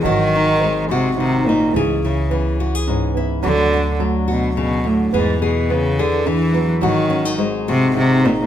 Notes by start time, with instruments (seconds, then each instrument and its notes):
0.03 upright bass G#1, nylon-string guitar G#2 F#4, cello D#3, upright piano F#3
0.36 nylon-string guitar D#4
0.60 nylon-string guitar G#3, upright piano C4
0.91 cello C3, nylon-string guitar F#4
1.17 cello C3, nylon-string guitar D#3, upright piano D#4
1.44 cello A#2, upright piano C4
1.49 nylon-string guitar D#4
1.73 upright bass C#2, cello G#2, nylon-string guitar C#3 G#4, upright piano E3
2.04 cello C#3, nylon-string guitar E4
2.30 nylon-string guitar E3, upright piano B3
2.60 nylon-string guitar F#4
2.75 nylon-string guitar G#4
2.86 nylon-string guitar G#2, upright piano C#4
3.14 upright piano B3, nylon-string guitar E4
3.43 upright bass D2, nylon-string guitar D3 F#4, cello D3, upright piano F#3
3.74 nylon-string guitar D4
3.99 nylon-string guitar F#3, upright piano A3
4.28 cello B2, nylon-string guitar F#4
4.57 cello B2, nylon-string guitar C#3
4.84 cello A2, nylon-string guitar D3, upright piano A3
5.13 upright bass E2, cello G#2, nylon-string guitar E3 G#4, upright piano B3
5.42 cello B2, nylon-string guitar G#4
5.69 cello C#3, upright piano B3, nylon-string guitar B3
5.99 cello D3, nylon-string guitar G#4
6.26 nylon-string guitar E3, cello E3, upright piano D4
6.54 nylon-string guitar F#3, upright piano B3
6.81 upright bass G#1, nylon-string guitar G#2 F#4, cello D#3, upright piano F#3
7.10 nylon-string guitar C#4
7.25 nylon-string guitar D#4
7.38 nylon-string guitar G#3, upright piano C4
7.68 cello C3, nylon-string guitar F#4
7.95 cello C3, nylon-string guitar D#3, upright piano D#4
8.23 cello A#2, upright piano C4, nylon-string guitar D#4
8.41 cello A#2